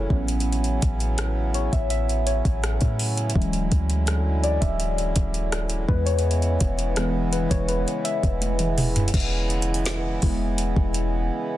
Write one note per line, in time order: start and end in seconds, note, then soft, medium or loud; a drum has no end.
0.00 3.32 C#3 medium
0.00 5.85 F#3 medium
0.00 0.12 G#3 soft
0.00 0.12 A3 soft
0.00 3.32 C#4 medium
0.00 0.12 E4 medium
0.00 9.10 E4 medium
0.00 0.12 A4 medium
0.00 0.12 B4 medium
0.00 0.12 C#5 loud
0.10 0.80 A1 loud
0.10 0.59 F#3 medium
0.10 3.32 B3 medium
0.10 0.59 B3 medium
0.10 0.59 C#4 medium
0.10 kick loud
0.28 closed hi-hat medium
0.40 closed hi-hat medium
0.53 closed hi-hat soft
0.64 closed hi-hat soft
0.82 1.69 A1 loud
0.82 kick loud
0.82 closed hi-hat medium
1.00 closed hi-hat soft
1.18 cross-stick loud
1.18 closed hi-hat medium
1.54 1.71 C#5 medium
1.54 closed hi-hat medium
1.72 2.42 A1 loud
1.72 1.89 E5 medium
1.72 kick medium
1.72 closed hi-hat soft
1.90 2.28 E5 loud
1.90 closed hi-hat medium
2.09 closed hi-hat soft
2.27 2.95 C#5 medium
2.27 closed hi-hat medium
2.45 2.80 A1 loud
2.45 kick medium
2.45 closed hi-hat soft
2.64 cross-stick loud
2.64 closed hi-hat medium
2.81 3.34 A2 loud
2.81 kick medium
2.81 closed hi-hat soft
2.99 open hi-hat medium
3.17 closed hi-hat medium
3.30 closed hi-hat medium
3.35 3.70 D1 loud
3.35 5.86 D3 medium
3.35 4.40 E3 medium
3.35 4.40 F#3 medium
3.35 9.10 G#3 medium
3.35 4.41 G#3 medium
3.35 5.86 C#4 medium
3.35 4.41 C#4 medium
3.35 kick loud
3.42 closed hi-hat soft
3.53 closed hi-hat soft
3.72 4.58 D2 loud
3.72 kick loud
3.72 closed hi-hat medium
3.90 closed hi-hat soft
4.07 cross-stick loud
4.07 closed hi-hat medium
4.43 4.62 D5 medium
4.43 closed hi-hat medium
4.61 5.14 D1 loud
4.61 4.95 E5 loud
4.61 kick medium
4.61 closed hi-hat soft
4.80 closed hi-hat medium
4.98 closed hi-hat soft
5.16 5.86 D1 loud
5.16 kick medium
5.16 closed hi-hat medium
5.34 closed hi-hat soft
5.52 cross-stick loud
5.52 closed hi-hat medium
5.70 closed hi-hat soft
5.88 6.58 E2 loud
5.88 9.11 C#3 medium
5.88 9.11 E3 medium
5.88 6.93 E3 medium
5.88 6.94 G#3 medium
5.88 9.11 B3 medium
5.88 6.94 B3 medium
5.88 6.07 B4 medium
5.88 kick loud
6.06 6.40 C#5 loud
6.06 closed hi-hat medium
6.19 closed hi-hat medium
6.31 closed hi-hat soft
6.42 closed hi-hat soft
6.61 7.48 E1 loud
6.61 kick loud
6.61 closed hi-hat medium
6.79 closed hi-hat soft
6.96 7.30 E3 medium
6.96 7.30 G#3 soft
6.96 7.30 B3 medium
6.96 cross-stick loud
6.96 closed hi-hat medium
7.32 7.51 B4 medium
7.32 closed hi-hat medium
7.50 7.86 E1 loud
7.50 7.69 C#5 medium
7.50 kick medium
7.50 closed hi-hat soft
7.68 8.06 B4 medium
7.68 closed hi-hat medium
7.88 closed hi-hat medium
8.04 8.73 E5 loud
8.04 closed hi-hat medium
8.23 9.10 E1 loud
8.23 kick medium
8.23 closed hi-hat soft
8.42 closed hi-hat medium
8.42 high tom medium
8.59 closed hi-hat soft
8.59 mid tom medium
8.78 mid tom medium
8.78 open hi-hat medium
8.96 closed hi-hat medium
8.96 floor tom medium
9.08 closed hi-hat medium
9.14 10.18 E1 loud
9.14 11.57 C#3 medium
9.14 11.57 E3 medium
9.14 11.57 G#3 medium
9.14 11.57 B3 medium
9.14 11.57 E4 medium
9.14 kick loud
9.14 closed hi-hat medium
9.14 crash loud
9.20 closed hi-hat soft
9.50 closed hi-hat medium
9.62 closed hi-hat medium
9.74 closed hi-hat medium
9.86 snare loud
9.86 closed hi-hat medium
10.22 10.75 E1 loud
10.22 11.27 G#3 medium
10.22 11.27 B3 medium
10.22 11.28 E4 medium
10.22 kick medium
10.22 open hi-hat soft
10.58 closed hi-hat medium
10.76 11.31 E1 loud
10.76 kick medium
10.94 closed hi-hat medium